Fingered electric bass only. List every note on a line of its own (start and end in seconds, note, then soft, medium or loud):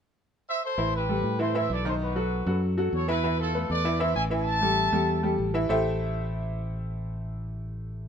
0.78 1.20 A1 medium
1.24 1.66 A2 medium
1.70 2.41 B1 medium
2.46 2.89 F#2 medium
2.93 3.64 E2 medium
3.70 4.13 E2 medium
4.16 4.87 A1 medium
4.92 5.35 E2 medium
5.38 5.66 A1 medium
5.70 8.08 A1 medium